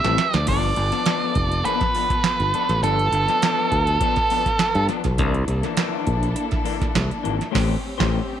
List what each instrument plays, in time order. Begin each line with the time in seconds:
Already playing: string section C4 G4 B4, lead electric guitar E5
0.04 fingered electric bass A1, clean electric guitar G3 C4 E4 A4, snare, closed hi-hat
0.18 muted clean electric guitar stroke, snare, closed hi-hat
0.33 fingered electric bass D2, lead electric guitar D5, muted clean electric guitar stroke, snare, closed hi-hat
0.47 fingered electric bass G1, clean electric guitar F3 B3 D4 A4, string section B3 F4 A4, lead electric guitar D5, kick, closed hi-hat, crash
0.63 closed hi-hat
0.76 fingered electric bass G1, muted clean electric guitar stroke, closed hi-hat
0.92 clean electric guitar F3 B3 D4 A4, snare, closed hi-hat
1.06 clean electric guitar F3 B3 D4 A4, snare, closed hi-hat
1.35 fingered electric bass F1, muted clean electric guitar stroke, kick, closed hi-hat
1.51 muted clean electric guitar stroke, closed hi-hat
1.65 clean electric guitar F3 B3 D4 A4, lead electric guitar B4, closed hi-hat
1.81 muted clean electric guitar stroke, kick, snare, closed hi-hat
1.95 clean electric guitar F3 B3 D4 A4, open hi-hat
2.10 muted clean electric guitar stroke, kick, snare, closed hi-hat
2.24 muted clean electric guitar stroke, snare, closed hi-hat
2.40 fingered electric bass G1, closed hi-hat
2.54 clean electric guitar F3 B3 D4 A4, closed hi-hat
2.69 fingered electric bass A1, muted clean electric guitar stroke, snare, closed hi-hat
2.83 fingered electric bass G1, clean electric guitar F3 B3 D4 A4, lead electric guitar A4, string section B4, closed hi-hat
2.99 closed hi-hat
3.12 fingered electric bass G1, muted clean electric guitar stroke, closed hi-hat
3.28 clean electric guitar F3 B3 D4 A4, snare, closed hi-hat
3.42 clean electric guitar F3 B3 D4 A4, snare, closed hi-hat
3.72 fingered electric bass D2, muted clean electric guitar stroke, kick, closed hi-hat
3.87 muted clean electric guitar stroke, closed hi-hat
4.00 clean electric guitar F3 B3 D4 A4, kick, closed hi-hat
4.16 muted clean electric guitar stroke, kick, snare, closed hi-hat
4.30 clean electric guitar F3 B3 D4 A4, open hi-hat
4.46 kick, snare, closed hi-hat
4.59 muted clean electric guitar stroke, snare, closed hi-hat
4.75 fingered electric bass G2, closed hi-hat
4.89 clean electric guitar F3 B3 D4 A4, snare, closed hi-hat
5.04 fingered electric bass B1, muted clean electric guitar stroke, kick, snare, closed hi-hat
5.18 fingered electric bass C2, clean electric guitar E3 A#3 D4 A4, string section A#3 D4 E4 A4, kick, closed hi-hat
5.34 closed hi-hat
5.48 fingered electric bass C2, muted clean electric guitar stroke, closed hi-hat
5.63 clean electric guitar E3 A#3 D4 A4, snare, closed hi-hat
5.77 clean electric guitar E3 A#3 D4 A4, snare, closed hi-hat
6.06 fingered electric bass A#1, muted clean electric guitar stroke, kick, closed hi-hat
6.22 muted clean electric guitar stroke, closed hi-hat
6.35 muted clean electric guitar stroke, closed hi-hat
6.51 kick, snare, closed hi-hat
6.64 clean electric guitar E3 A#3 D4 A4, open hi-hat
6.80 muted clean electric guitar stroke, kick, snare, closed hi-hat
6.94 fingered electric bass C2, muted clean electric guitar stroke, snare, closed hi-hat
7.11 closed hi-hat
7.23 fingered electric bass G#1, clean electric guitar E3 A#3 D4 A4, closed hi-hat
7.38 muted clean electric guitar stroke, snare, closed hi-hat
7.51 fingered electric bass A1, clean electric guitar A3 C#4 G4 C5, kick, snare, crash
7.56 string section C4 C#4 G4
7.98 fingered electric bass A1, clean electric guitar A3 C#4 G4 C5, kick, snare